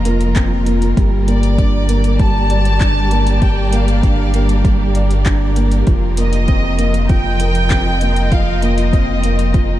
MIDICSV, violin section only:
0, 0, Header, 1, 2, 480
1, 0, Start_track
1, 0, Key_signature, -2, "minor"
1, 0, Tempo, 612245
1, 762, Time_signature, 4, 2, 24, 8
1, 7678, End_track
2, 0, Start_track
2, 0, Title_t, "Violin section"
2, 0, Program_c, 0, 48
2, 0, Note_on_c, 0, 82, 101
2, 283, Note_off_c, 0, 82, 0
2, 1000, Note_on_c, 0, 74, 96
2, 1689, Note_off_c, 0, 74, 0
2, 1720, Note_on_c, 0, 81, 118
2, 2681, Note_off_c, 0, 81, 0
2, 2687, Note_on_c, 0, 79, 95
2, 2908, Note_off_c, 0, 79, 0
2, 2928, Note_on_c, 0, 77, 89
2, 3885, Note_off_c, 0, 77, 0
2, 4846, Note_on_c, 0, 75, 100
2, 5532, Note_off_c, 0, 75, 0
2, 5565, Note_on_c, 0, 79, 114
2, 6524, Note_off_c, 0, 79, 0
2, 6525, Note_on_c, 0, 77, 101
2, 6763, Note_off_c, 0, 77, 0
2, 6769, Note_on_c, 0, 75, 85
2, 7678, Note_off_c, 0, 75, 0
2, 7678, End_track
0, 0, End_of_file